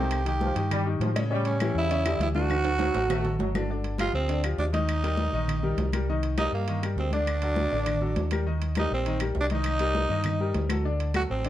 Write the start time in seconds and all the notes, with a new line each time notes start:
Already playing: C2 C3 D#3 C4 G4 C5
0.11 high conga, high timbale, claves
0.25 D#3 D#4 G4, high conga, high timbale
0.41 F3, high conga
0.55 G2 D#3 D#4 G4, high conga, high timbale
0.71 G3, high conga, low conga, high timbale, claves
0.86 D#3 D#4 G4, high conga
1.00 A2 F3, high conga, high timbale, low timbale
1.16 C#3 C#4 C#5, high conga, high timbale, claves
1.30 C#3 G3 C#4 C#5, high conga
1.45 C#4, high conga, high timbale
1.60 E3 E4 G4, high conga, high timbale, claves
1.74 E2 C#3 E4, high conga
1.91 C#3 C#4 C#5, high conga, high timbale
2.05 D3 E3 E4 G4, high conga, high timbale, claves
2.19 D2 E4, high conga, high timbale, low timbale
2.34 D3 E3 D4 F#4 D5, high conga
2.50 high conga, high timbale, claves
2.65 F#3 F#4 A4, high conga, high timbale
2.79 F#3, high conga, high timbale
2.94 A1 F#3 F#4 A4, high conga, low timbale
3.09 A3, high conga, low conga, low timbale, claves
3.24 F#3 F#4 A4, high conga, low conga, low timbale
3.39 G1 F#3, high conga, low timbale
3.55 D3 D4 D5, high conga, low timbale, claves
3.70 D3 D4 D5, high conga
3.84 high conga, high timbale
3.98 F3 F4 G4, high conga, high timbale, low timbale, claves
4.13 D2 C4, high conga
4.29 D3 D4 D5, high conga, high timbale
4.43 F3 F4 G4, high conga, high timbale, claves
4.58 D#2 D4, high conga, low timbale
4.73 D#3 D#4 D#5, high conga, high timbale
4.88 high conga, high timbale, claves
5.03 G3 G4 A#4, high conga, high timbale
5.17 high conga, low timbale
5.32 A#1 D#3 D#4 D#5, high conga
5.48 high conga, low conga, high timbale, claves
5.63 G3 G4 A#4, high conga, low conga
5.77 C2, high conga, high timbale, low timbale
5.93 G3 G4 A#4, high conga, high timbale, claves
6.08 D#3 D#4 D#5, high conga
6.23 high conga, high timbale
6.38 G3 D#4 G4 A#4, high conga, high timbale, low timbale, claves
6.52 G2 A#3, high conga
6.67 D#3 D#4 D#5, high conga, high timbale
6.82 G3 G4 A#4, high conga, high timbale, claves
6.96 D2 C4, high conga, low timbale
7.11 D3 D4 D5, high conga, high timbale
7.27 high conga, high timbale, claves
7.41 F#3 F#4 A4, high conga, high timbale
7.56 high conga, low timbale
7.71 A1 D3 D4 D5, high conga
7.86 high conga, low conga, high timbale, claves
8.01 F#3 F#4 A4, high conga, low conga
8.16 D#2, high conga, high timbale, low timbale
8.31 G3 G4 A#4, high conga, high timbale, claves
8.46 D#3 D#4 D#5, high conga
8.62 high conga, high timbale
8.75 G3 D#4 G4 A#4, high conga, high timbale, low timbale, claves
8.91 A#1 C4, high conga
9.06 D#3 D#4 D#5, high conga, high timbale
9.20 G3 G4 A#4, high conga, high timbale, claves
9.35 C2, high conga, low timbale
9.41 D4
9.50 D#3 D#4 D#5, high conga, high timbale
9.55 D#4
9.64 high conga, high timbale, claves
9.79 G3 G4 A#4, high conga, high timbale
9.95 high conga, low timbale
10.09 G2 D#3 D#4 D#5, high conga
10.24 high conga, low conga, high timbale, claves
10.39 G3 G4 A#4, high conga
10.54 D2, high conga, high timbale, low timbale
10.69 F#3 F#4 A4, high conga, high timbale, claves
10.85 D3 D4 D5, high conga
10.99 high conga, high timbale
11.14 F#3 F#4 A4, high conga, high timbale, low timbale, claves
11.29 A1 C4, high conga
11.44 D3 D4 D5, high conga, high timbale